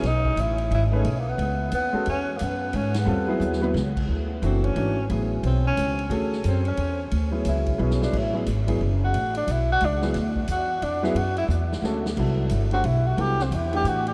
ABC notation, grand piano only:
X:1
M:3/4
L:1/8
Q:"Swing" 1/4=178
K:E
V:1 name="Grand piano"
z4 z [A,DGB] | z4 z [G,CFA] | z6 | [=G,=C=FA] [^F,B,E^G]2 [F,B,EB] z2 |
[K:Dlyd] z2 [E,A,DF]2 [E,A,DF] z | [F,B,EG]3 z3 | [CFGA]3 z3 | z [F,B,EG]3 [F,B,EG]2- |
[F,B,EG] [F,B,EG] z [F,B,EG] z2 | z4 z [F,B,EG] | z4 z [F,B,EG] | z4 [G,CFA] z |
[K:Clyd] [F,B,EA]3 [A,DGc] z2 | [F,B,EA] z2 [E,A,DG]3 |]